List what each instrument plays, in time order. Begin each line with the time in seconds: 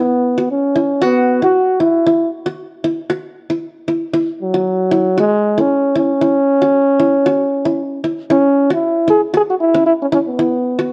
Already playing: qanun E4
0.00 trombone B3
0.37 qanun F#4
0.51 trombone C#4
0.75 qanun E4
1.01 trombone B3, qanun F#4
1.42 qanun E4, trombone F#4
1.80 qanun E4, trombone E4
2.06 qanun E4
2.46 qanun F#4
2.84 qanun E4
3.10 qanun F#4
3.50 qanun E4
3.88 qanun E4
4.14 qanun E4
4.42 trombone F#3
4.54 qanun F#4
4.91 qanun E4
5.18 trombone G#3, qanun F#4
5.58 trombone C#4, qanun E4
5.96 trombone C#4, qanun E4
6.21 qanun E4
6.62 qanun F#4
7.00 qanun E4
7.26 qanun F#4
7.65 qanun E4
8.04 qanun E4
8.30 trombone C#4, qanun E4
8.70 trombone E4, qanun F#4
9.08 qanun E4, trombone G#4
9.34 qanun F#4, trombone G#4
9.50 trombone F#4
9.60 trombone E4
9.74 qanun C#4
9.86 trombone E4
10.02 trombone C#4
10.12 trombone C#4, qanun E4
10.27 trombone B3
10.39 qanun E4
10.79 qanun F#4